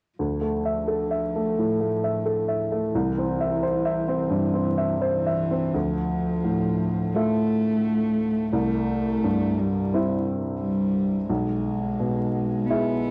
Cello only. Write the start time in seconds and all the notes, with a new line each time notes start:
0.18 F3
2.95 E3
5.02 E3
5.75 F3
7.14 A3
8.54 A3
9.59 G3
10.61 G3
11.29 G#3
12.66 B3